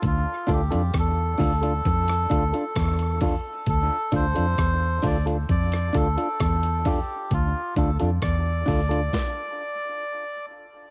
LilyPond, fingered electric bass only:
\new Staff \with { instrumentName = "Fingered electric bass" } { \clef bass \time 4/4 \key d \minor \tempo 4 = 66 d,16 r16 d,16 f,16 e,8 d,8 f,8 d,16 r16 e,8. r16 | d,16 r16 d,16 f,16 e,8 d,8 f,8 d,16 r16 e,8. r16 | d,16 r16 d,16 f,16 e,8 d,8 r2 | }